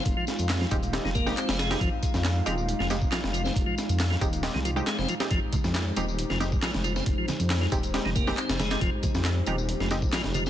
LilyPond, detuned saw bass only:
\new Staff \with { instrumentName = "Detuned saw bass" } { \clef bass \time 4/4 \key f \minor \tempo 4 = 137 f,,16 r8 f,8 r16 ees,,8 r16 f,,8 r8 f,,8 r16 | f,,16 r8 f,8 r16 ees,,8 r16 f,,8 r8 f,,8 r16 | f,,16 r8 f,8 r16 ees,,8 r16 c,8 r8 f,,16 r8 | f,,16 r8 f,8 r16 ees,,8 r16 f,,8 r8 f,,8 r16 |
f,,16 r8 f,8 r16 ees,,8 r16 f,,8 r8 f,,8 r16 | f,,16 r8 f,8 r16 ees,,8 r16 f,,8 r8 f,,8 r16 | }